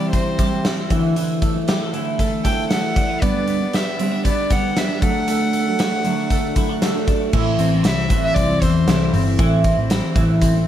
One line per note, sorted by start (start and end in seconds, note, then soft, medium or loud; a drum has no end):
0.00 0.37 C3 soft
0.00 0.90 E3 medium
0.00 0.38 G3 medium
0.00 0.12 C4 medium
0.00 0.39 C4 soft
0.00 0.40 E4 medium
0.00 1.93 E4 soft
0.00 0.38 G4 medium
0.00 0.11 D5 medium
0.12 0.64 C4 medium
0.12 0.86 C5 medium
0.12 kick medium
0.12 closed hi-hat medium
0.38 0.77 C3 medium
0.38 0.78 G3 medium
0.38 0.77 C4 medium
0.38 0.75 E4 medium
0.38 0.96 G4 medium
0.38 kick medium
0.38 closed hi-hat medium
0.65 0.96 C4 medium
0.65 snare medium
0.65 closed hi-hat medium
0.77 0.90 G3 soft
0.77 0.91 C4 soft
0.77 0.90 E4 soft
0.90 1.57 D3 medium
0.90 1.55 E3 medium
0.90 1.15 E3 medium
0.90 1.54 A3 medium
0.90 1.53 E4 medium
0.90 kick medium
0.90 closed hi-hat medium
1.16 3.22 E3 medium
1.16 closed hi-hat medium
1.42 2.18 A3 medium
1.42 kick medium
1.42 closed hi-hat medium
1.54 1.92 E3 soft
1.54 1.93 A3 soft
1.54 1.93 E4 medium
1.68 1.81 G4 medium
1.68 snare medium
1.68 closed hi-hat medium
1.81 2.44 A4 soft
1.93 2.44 D3 medium
1.93 2.44 E3 medium
1.93 2.45 A3 medium
1.93 2.96 E4 soft
1.93 2.46 E4 medium
1.93 closed hi-hat medium
2.19 2.70 A3 medium
2.19 kick medium
2.19 closed hi-hat medium
2.44 2.83 D3 medium
2.44 2.84 E3 medium
2.44 2.83 A3 medium
2.44 2.82 E4 medium
2.44 3.27 A4 medium
2.44 2.69 G5 medium
2.44 kick medium
2.44 closed hi-hat medium
2.71 3.22 A3 medium
2.71 3.23 F#5 medium
2.71 snare medium
2.71 closed hi-hat medium
2.83 3.22 E3 soft
2.83 3.22 A3 soft
2.83 3.22 E4 soft
2.96 3.09 D4 soft
2.96 kick medium
2.96 closed hi-hat medium
3.09 3.27 E4 soft
3.22 3.60 G2 medium
3.22 3.61 D3 medium
3.22 3.61 G3 medium
3.22 3.47 B3 medium
3.22 3.60 B3 medium
3.22 3.59 D4 medium
3.22 3.76 D5 medium
3.22 kick loud
3.22 closed hi-hat medium
3.47 4.23 B3 medium
3.47 closed hi-hat medium
3.60 3.98 G3 soft
3.60 4.00 B3 soft
3.60 3.99 D4 soft
3.73 4.49 G4 medium
3.73 4.26 E5 medium
3.73 snare medium
3.73 closed hi-hat medium
3.99 4.49 D3 medium
3.99 4.49 G3 medium
3.99 4.50 B3 medium
3.99 4.12 C4 medium
3.99 4.52 D4 medium
3.99 closed hi-hat medium
4.12 5.07 D4 soft
4.25 4.75 B3 medium
4.25 4.53 D5 medium
4.25 kick medium
4.25 closed hi-hat medium
4.50 4.89 D3 medium
4.50 4.89 G3 medium
4.50 4.89 B3 medium
4.50 4.87 D4 medium
4.50 5.07 G4 medium
4.50 4.80 F#5 medium
4.50 kick medium
4.50 snare soft
4.50 closed hi-hat medium
4.77 5.02 B3 medium
4.77 5.03 E5 medium
4.77 snare medium
4.77 closed hi-hat medium
4.88 5.02 G3 soft
4.88 5.02 B3 soft
4.88 5.02 D4 soft
5.02 5.66 D3 medium
5.02 5.67 F#3 medium
5.02 5.28 A3 medium
5.02 5.67 A3 medium
5.02 5.65 D4 medium
5.02 6.79 F#5 medium
5.02 kick medium
5.02 closed hi-hat medium
5.28 5.53 A3 medium
5.28 closed hi-hat medium
5.53 6.30 A3 medium
5.53 closed hi-hat medium
5.66 6.04 F#3 soft
5.66 6.04 A3 soft
5.66 6.05 D4 medium
5.79 6.56 F#4 medium
5.79 snare medium
5.79 closed hi-hat medium
6.04 6.54 D3 medium
6.04 6.56 F#3 medium
6.04 6.57 A3 medium
6.04 7.07 D4 medium
6.04 6.57 D4 medium
6.04 closed hi-hat medium
6.30 6.82 A3 medium
6.30 kick medium
6.30 closed hi-hat medium
6.55 6.94 D3 medium
6.55 6.95 F#3 medium
6.55 6.95 A3 medium
6.55 6.93 D4 medium
6.55 6.69 E4 soft
6.55 kick medium
6.55 closed hi-hat medium
6.69 7.39 F#4 soft
6.82 7.59 A3 medium
6.82 snare medium
6.82 closed hi-hat medium
6.94 7.34 F#3 soft
6.94 7.33 A3 medium
6.94 7.33 D4 soft
7.08 7.34 D4 medium
7.08 kick medium
7.08 closed hi-hat medium
7.33 7.55 A1 medium
7.33 7.72 A2 medium
7.33 7.72 E3 medium
7.33 8.10 E3 medium
7.33 7.72 A3 medium
7.33 7.72 C4 medium
7.33 7.84 E4 medium
7.33 7.70 E4 medium
7.33 kick loud
7.33 crash medium
7.59 7.81 A1 medium
7.59 8.36 C4 medium
7.59 closed hi-hat medium
7.72 8.09 A3 soft
7.72 8.10 C4 soft
7.72 8.10 E4 soft
7.84 8.10 C2 medium
7.84 8.87 E4 medium
7.84 8.21 E5 medium
7.84 snare medium
7.84 closed hi-hat medium
8.09 8.32 A1 medium
8.09 8.48 E3 medium
8.09 8.61 E3 medium
8.09 8.49 A3 medium
8.09 8.49 C4 medium
8.09 8.47 E4 medium
8.09 kick medium
8.09 closed hi-hat medium
8.23 8.36 E5 medium
8.35 8.58 C2 medium
8.35 9.13 C4 medium
8.35 8.64 D5 medium
8.35 kick medium
8.35 closed hi-hat medium
8.48 8.87 A3 soft
8.48 8.88 C4 soft
8.48 8.87 E4 soft
8.62 8.84 E2 medium
8.62 9.38 E3 medium
8.62 9.13 C5 medium
8.62 kick medium
8.62 snare soft
8.62 closed hi-hat medium
8.87 9.09 C2 medium
8.87 9.37 A2 medium
8.87 9.39 E3 medium
8.87 9.38 A3 medium
8.87 9.40 C4 medium
8.87 9.39 E4 medium
8.87 9.40 E4 medium
8.87 snare medium
8.87 closed hi-hat medium
9.13 9.35 G1 loud
9.13 9.64 C4 soft
9.13 open hi-hat medium
9.39 9.72 A1 loud
9.39 9.77 A2 medium
9.39 10.15 E3 medium
9.39 9.78 E3 medium
9.39 9.78 A3 medium
9.39 9.78 C4 medium
9.39 9.89 E4 medium
9.39 9.76 E4 loud
9.39 kick loud
9.39 closed hi-hat medium
9.64 10.41 C4 medium
9.64 kick medium
9.64 closed hi-hat medium
9.77 9.99 A1 medium
9.77 10.15 A3 soft
9.77 10.16 C4 medium
9.77 10.16 E4 medium
9.90 10.68 E4 medium
9.90 snare loud
9.90 closed hi-hat medium
10.16 10.68 A1 medium
10.16 10.54 E3 medium
10.16 10.67 E3 soft
10.16 10.55 A3 medium
10.16 10.54 C4 medium
10.16 10.53 E4 medium
10.16 kick medium
10.16 closed hi-hat medium
10.41 10.68 C4 medium
10.41 kick medium
10.41 closed hi-hat medium
10.54 10.68 A3 medium
10.54 10.68 C4 medium
10.54 10.68 E4 soft